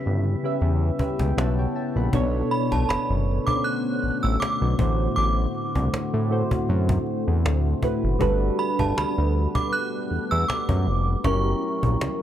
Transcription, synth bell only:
0.00 0.57 B6 loud
2.51 2.72 B5 medium
2.72 2.90 A5 medium
2.89 3.49 B5 medium
3.47 3.63 D6 loud
3.64 4.25 F#6 loud
4.23 4.41 E6 loud
4.40 5.15 D6 loud
5.16 6.64 D6 medium
8.59 8.80 B5 medium
8.80 8.97 A5 medium
8.98 9.57 B5 medium
9.55 9.73 D6 loud
9.73 10.33 F#6 loud
10.31 10.47 E6 loud
10.48 11.27 D6 loud
11.25 12.22 C#6 medium

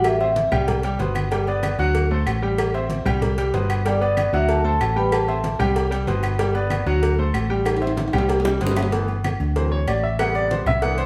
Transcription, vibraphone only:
0.05 0.49 E5 medium
0.05 0.49 E6 medium
3.87 4.31 D5 medium
3.87 4.30 D6 medium
4.34 4.41 E5 medium
4.34 4.41 E6 medium
4.50 4.57 A4 medium
4.50 4.57 A5 loud
4.65 4.95 A4 medium
4.65 4.97 A5 loud
4.97 5.12 B4 medium
4.97 5.11 B5 loud
5.12 5.57 A4 medium
5.12 5.56 A5 medium

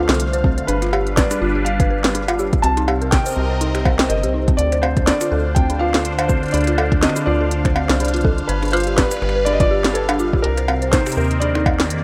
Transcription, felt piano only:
0.00 0.39 A4 medium
0.67 1.13 B4 medium
1.16 1.62 D5 medium
1.65 2.66 F5 loud
2.62 3.13 A5 loud
3.11 4.12 G5 loud
4.09 4.60 D#5 medium
4.57 4.83 D5 loud
4.82 5.07 C5 medium
5.06 5.57 D5 loud
5.55 5.78 G5 loud
5.79 6.25 F5 loud
6.28 6.54 C5 medium
6.52 7.03 D5 loud
7.01 7.27 D#5 medium
7.26 7.96 D5 loud
8.48 8.73 B4 loud
8.72 8.98 C5 loud
8.96 9.42 B4 loud
9.45 9.54 D5 loud
9.53 9.61 D#5 medium
9.60 9.96 D5 loud
9.94 10.45 A4 medium
10.42 10.93 A#4 loud
10.91 11.37 C5 loud
11.40 12.04 D5 medium

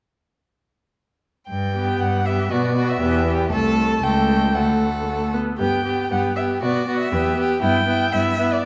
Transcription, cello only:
1.49 1.95 G2 soft
2.00 2.45 G2 soft
2.52 2.96 B2 soft
3.02 3.46 E2 medium
3.52 3.99 C2 soft
4.03 4.56 C#2 soft
4.55 5.39 D2 soft
5.59 6.03 G2 soft
6.11 6.54 G2 soft
6.63 7.04 B2 soft
7.12 7.54 E2 medium
7.63 8.05 G2 medium
8.13 8.57 G2 medium

